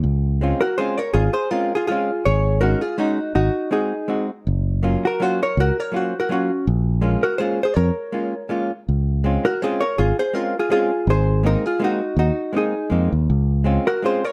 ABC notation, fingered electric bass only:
X:1
M:3/4
L:1/8
Q:"Swing" 1/4=163
K:Db
V:1 name="Fingered electric bass" clef=bass
D,,4 z2 | A,,, z4 z | A,,,4 z2 | A,,, z4 z |
G,,,4 z2 | D,, z4 z | B,,,4 z2 | F,, z4 z |
D,,4 z2 | A,,, z4 z | A,,,4 z2 | E,, z3 F,, E,, |
D,,4 z2 |]